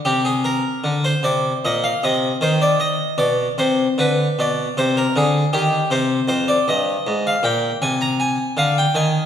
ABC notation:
X:1
M:4/4
L:1/16
Q:1/4=77
K:Cm
V:1 name="Harpsichord"
G A B3 c d2 e f e2 c d e2 | d2 c2 =B2 d2 c _B A2 G2 c2 | c d e3 f g2 a b a2 f g a2 |]
V:2 name="Harpsichord" clef=bass
C,4 D,2 C,2 B,,2 C,2 E,4 | =B,,2 C,2 D,2 B,,2 C,2 D,2 E,2 C,2 | F,,2 G,,2 A,,2 B,,2 C,4 D,2 E,2 |]